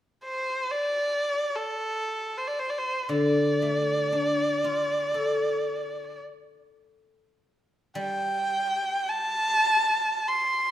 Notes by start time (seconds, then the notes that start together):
0.25 C5
0.71 D5
1.56 A4
2.38 C5
2.47 D5
2.59 C5
2.70 D5
2.78 C5
3.09 D3 D5
3.62 A3
4.13 D4
4.64 F4
5.14 A4
7.95 G3 G5
9.09 A5
10.28 C6